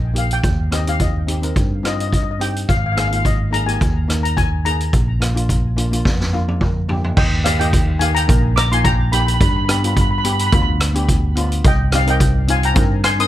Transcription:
Already playing: fingered electric bass A#1, steel pan D#5
0.13 steel pan A#3 D#4 G4, closed hi-hat
0.18 steel pan F5
0.31 steel pan G5, closed hi-hat
0.43 fingered electric bass D#2, kick, closed hi-hat
0.71 steel pan C4 D#4 G4 D#5, cross-stick, closed hi-hat
0.87 steel pan C4 D#4 G4 F5, closed hi-hat
1.00 steel pan D#5, kick, closed hi-hat
1.27 steel pan C4 D#4 G4, closed hi-hat
1.42 steel pan C4 D#4 A#4, closed hi-hat
1.56 fingered electric bass G2, kick, closed hi-hat
1.83 steel pan C4 D#4 F4 D#5, cross-stick, closed hi-hat
1.94 steel pan D#5
2.00 steel pan D#5, closed hi-hat
2.08 steel pan D#5
2.13 steel pan D#5, kick, closed hi-hat
2.23 steel pan D#5
2.31 steel pan D#5
2.40 steel pan C4 D#4 G4 G5, closed hi-hat
2.56 closed hi-hat
2.69 fingered electric bass G#1, steel pan F5, kick, closed hi-hat
2.77 steel pan F5
2.86 steel pan F5
2.92 steel pan A#3 F5
2.96 steel pan D#4 G#4 F5, cross-stick, closed hi-hat
3.08 steel pan A#3 D#4 F5
3.12 steel pan F4 F5, closed hi-hat
3.25 steel pan D#5, kick, closed hi-hat
3.51 steel pan A#3 D#4 G#4 A#5, closed hi-hat
3.66 steel pan A#3 D#4 G4 G#5, closed hi-hat
3.81 fingered electric bass D#2, kick, closed hi-hat
4.08 steel pan A#3 D#4 A#4, cross-stick, closed hi-hat
4.23 steel pan A#5, closed hi-hat
4.37 steel pan G#5, kick, closed hi-hat
4.65 steel pan A#3 D#4 G#4 A#5, closed hi-hat
4.80 closed hi-hat
4.93 fingered electric bass A#1, kick, closed hi-hat
5.20 steel pan A#3 D4 F4, cross-stick, closed hi-hat
5.35 steel pan A#3 D4 F4, closed hi-hat
5.49 kick, closed hi-hat
5.76 steel pan A#3 D4 F4, closed hi-hat
5.91 steel pan A#3 D4 F4, closed hi-hat
6.05 fingered electric bass F2, kick, snare
6.21 snare
6.32 steel pan A#3 D4 F4 F5
6.48 steel pan D5, high tom
6.61 steel pan A#4, kick, mid tom
6.88 steel pan A#3 D4 G4, floor tom
7.04 floor tom
7.17 fingered electric bass D#2, steel pan D#5 G5, kick, crash
7.44 steel pan A#3 D#4 G4 D5 F5, cross-stick, closed hi-hat
7.60 steel pan A#3 D#4 G4 D#5 G5, closed hi-hat
7.73 kick, closed hi-hat
7.99 steel pan A#3 D#4 G4 F5 G#5, closed hi-hat
8.15 steel pan G5 A#5, closed hi-hat
8.27 fingered electric bass A#1, steel pan A#3 D#4 A#4, kick, closed hi-hat
8.56 steel pan A#5 D6, cross-stick, closed hi-hat
8.71 steel pan A#3 D#4 F4 G#5 C6, closed hi-hat
8.84 steel pan G5 A#5, kick, closed hi-hat
9.12 steel pan A#3 D#4 G4 G5 B5, closed hi-hat
9.20 steel pan B5
9.27 steel pan B5, closed hi-hat
9.34 steel pan B5
9.41 fingered electric bass G2, steel pan B5, kick, closed hi-hat
9.49 steel pan B5
9.56 steel pan B5
9.65 steel pan B3 D4 B5, cross-stick, closed hi-hat
9.69 steel pan G4 B5
9.79 steel pan B3 B5
9.84 steel pan D4 F4 B5, closed hi-hat
9.93 steel pan B5, kick, closed hi-hat
10.01 steel pan B5
10.11 steel pan B5
10.18 steel pan B5
10.24 steel pan B3 D4 G4 B5, closed hi-hat
10.32 steel pan B5
10.39 steel pan B5, closed hi-hat
10.47 steel pan B5
10.52 fingered electric bass D2, steel pan B3 D4 F4 B5, kick, closed hi-hat
10.62 steel pan B5
10.80 cross-stick, closed hi-hat
10.94 steel pan B3 D4 G4, closed hi-hat
11.09 kick, closed hi-hat
11.35 steel pan B3 D4 F4, closed hi-hat
11.52 closed hi-hat
11.64 fingered electric bass C2, steel pan D#5 G5, kick, closed hi-hat
11.92 steel pan C4 D#4 G4 D5 F5, cross-stick, closed hi-hat
12.06 steel pan C4 D#4 A#4 D#5, closed hi-hat
12.10 steel pan G5
12.20 kick, closed hi-hat
12.47 steel pan C4 D#4 F4 F5 G#5, closed hi-hat
12.63 steel pan G5 A#5, closed hi-hat
12.74 fingered electric bass G2, steel pan C4 D#4 A#4, kick, closed hi-hat
13.04 steel pan G#5 C6, cross-stick, closed hi-hat
13.19 steel pan C4 D#4 A#4 C6 D#6, closed hi-hat

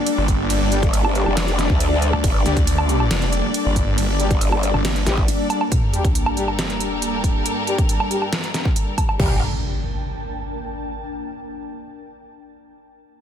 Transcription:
Already playing: string section G3 D4 A4 D5, ambient pad A#3 D4 G5
0.06 closed hi-hat, ride
0.18 detuned saw bass G1
0.28 kick, closed hi-hat
0.50 closed hi-hat, ride
0.61 detuned saw bass G1
0.72 brass ensemble G3 D4 G4, closed hi-hat
0.83 wobble bass G1, kick, closed hi-hat
0.93 closed hi-hat, ride
1.05 low woodblock
1.15 brass ensemble G3 D4 G4, closed hi-hat
1.26 wobble bass F1, low woodblock
1.37 snare, closed hi-hat, ride
1.48 closed hi-hat
1.59 snare, closed hi-hat
1.70 wobble bass D2, kick
1.80 closed hi-hat, ride
2.02 closed hi-hat
2.13 detuned saw bass D2, low woodblock
2.24 wobble bass G1, kick, closed hi-hat, ride
2.46 detuned saw bass D2, brass ensemble G3 D4 G4, closed hi-hat
2.57 kick, closed hi-hat
2.67 closed hi-hat, ride
2.78 low woodblock
2.89 brass ensemble G3 D4 G4, closed hi-hat
3.00 low woodblock
3.11 detuned saw bass F1, snare, closed hi-hat, ride
3.22 closed hi-hat
3.33 closed hi-hat
3.54 closed hi-hat, ride
3.65 detuned saw bass G1
3.76 kick, closed hi-hat
3.98 closed hi-hat, ride
4.09 detuned saw bass G1
4.20 brass ensemble G3 D4 G4, closed hi-hat
4.31 wobble bass G1, kick, closed hi-hat
4.41 closed hi-hat, ride
4.52 low woodblock
4.63 closed hi-hat
4.74 detuned saw bass G1, low woodblock
4.85 snare, closed hi-hat, ride
4.96 closed hi-hat
5.06 wobble bass A1, brass ensemble G3 D4 G4, snare, closed hi-hat
5.18 kick
5.28 closed hi-hat, ride
5.50 closed hi-hat, low woodblock
5.61 low woodblock
5.72 string section G2 G3 A4 A#4, ambient pad D4, kick, closed hi-hat, sub drop
5.81 ambient pad A#3
5.92 brass ensemble G3 D4 G4, ambient pad G5, closed hi-hat
6.05 kick, closed hi-hat
6.15 closed hi-hat
6.26 low woodblock
6.37 brass ensemble G3 D4 G4, closed hi-hat
6.48 low woodblock
6.59 ambient pad A5, snare, closed hi-hat
6.70 closed hi-hat
6.80 closed hi-hat
7.02 closed hi-hat
7.24 kick, closed hi-hat
7.46 closed hi-hat
7.67 brass ensemble G3 D4 G4, closed hi-hat
7.78 kick, closed hi-hat
7.89 closed hi-hat
8.00 low woodblock
8.11 brass ensemble G3 D4 G4, closed hi-hat
8.22 low woodblock
8.33 snare, closed hi-hat
8.44 closed hi-hat
8.54 snare, closed hi-hat
8.65 kick
8.76 closed hi-hat
8.98 kick, closed hi-hat, low woodblock
9.09 low woodblock
9.20 wobble bass G1, brass ensemble G3 D4 G4, string section G3 D4 A4 A#4, ambient pad D4, kick, floor tom, crash, impact
9.26 ambient pad A#4
9.33 ambient pad G5
9.39 ambient pad A5

